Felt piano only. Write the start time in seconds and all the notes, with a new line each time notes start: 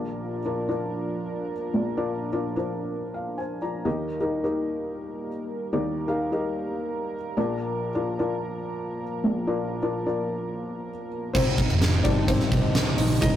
Already playing: A#1 A#2 D4 F4 A#4 D5
0.46 D4 F4 A#4 D5
0.69 D4 F4 A#4 D5
1.74 A#1 A#2
1.97 D4 F4 A#4 D5
2.33 D4 F4 A#4 D5
2.56 D4 F4 A#4 C5
3.14 F5
3.38 C5 G#5
3.62 F4 D5 A#5
3.85 D#2 D#3 D#4 G4 A#4 D#5
4.20 D#4 G4 A#4 D#5
4.44 D#4 G4 A#4 D#5
5.73 D#2 D#3 D#4 G4 A#4 D5
6.08 D#4 G4 A#4 F5
6.32 D#4 G4 A#4 D#5
7.37 A#1 A#2 D4 F4 A#4 D5
7.95 D4 F4 A#4 D5
8.19 D4 F4 A#4 D5
9.24 A#1 A#2
9.47 D4 F4 A#4 D5
9.82 D4 F4 A#4 D5
10.06 D4 F4 A#4 D5
11.34 C4 C5
12.04 G3 C4 D4 D#4 D5
12.28 C4 C5
12.98 D#4 D#5
13.21 G3 C4 D#4 D#5